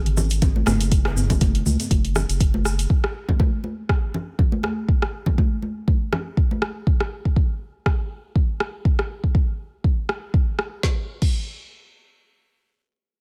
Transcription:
Already playing: G#1
0.06 closed hi-hat, mid tom
0.17 djembe tone, low conga, shaker
0.30 closed hi-hat, shaker
0.42 kick, closed hi-hat, djembe tone, low conga, shaker
0.56 high conga
0.66 F#1, cross-stick, djembe slap, high conga, djembe bass, shaker
0.81 closed hi-hat, shaker
0.92 kick, closed hi-hat, shaker
1.05 cross-stick, djembe slap
1.16 djembe bass, shaker
1.30 kick, closed hi-hat, mid tom, high conga, low conga, shaker
1.41 kick, closed hi-hat, djembe tone, high conga, shaker
1.55 closed hi-hat
1.66 C#2, mid tom, high conga, shaker
1.80 closed hi-hat, djembe tone, shaker
1.91 F#1, kick, closed hi-hat, high conga, shaker
2.05 closed hi-hat
2.15 cross-stick, low conga, shaker
2.29 F#1, closed hi-hat, shaker
2.40 kick, closed hi-hat, shaker
2.54 high conga
2.65 cross-stick, shaker
2.79 closed hi-hat, shaker
2.90 kick
3.04 cross-stick
3.29 kick, high conga, low conga
3.40 kick, high conga
3.64 high conga
3.89 kick, cross-stick
4.14 low conga
4.39 kick, low conga
4.52 high conga
4.63 cross-stick, high conga
4.89 kick
5.02 cross-stick
5.26 kick, high conga, low conga
5.38 kick, high conga
5.62 high conga
5.88 kick, high conga
6.12 cross-stick, low conga
6.37 kick
6.51 high conga
6.62 cross-stick
6.87 kick
7.00 cross-stick
7.25 kick
7.36 kick
7.86 kick, cross-stick
8.36 kick
8.60 cross-stick
8.85 kick
8.99 cross-stick
9.24 kick
9.35 kick
9.84 kick
10.09 cross-stick
10.34 kick
10.59 cross-stick
10.83 kick, snare
11.22 kick, crash

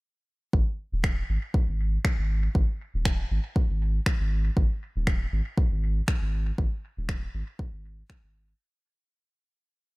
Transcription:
0.53 G#1, kick
0.92 D#1
1.04 finger snap, kick
1.29 G#1
1.54 kick
1.68 G#1
2.05 finger snap, kick
2.18 G#1
2.55 G#1, kick
2.94 D#1
3.05 finger snap, kick
3.31 G#1
3.56 kick
3.70 G#1
4.06 finger snap, kick
4.20 G#1
4.57 G#1, kick
4.96 D#1
5.07 finger snap, kick
5.32 G#1
5.58 kick
5.71 G#1
6.08 finger snap, kick
6.22 G#1
6.58 G#1, kick
6.97 D#1
7.09 finger snap, kick
7.34 G#1
7.59 kick
7.73 G#1
8.10 finger snap, kick
8.23 G#1

